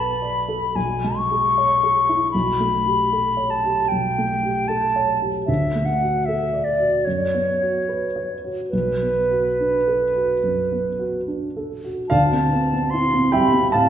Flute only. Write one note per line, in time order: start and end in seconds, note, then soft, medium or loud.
0.00 0.77 B5 medium
0.76 1.19 G#5 medium
1.17 2.31 C#6 medium
2.31 3.52 B5 medium
3.50 3.90 A5 medium
3.88 4.70 G5 medium
4.68 5.18 A5 medium
5.46 5.87 E5 medium
5.85 6.27 F#5 medium
6.25 6.66 E5 medium
6.64 7.06 D5 medium
7.05 8.41 C#5 medium
8.69 11.21 B4 soft
12.09 12.92 A5 medium
12.90 13.33 C6 medium
13.32 13.71 B5 medium
13.71 13.89 A5 medium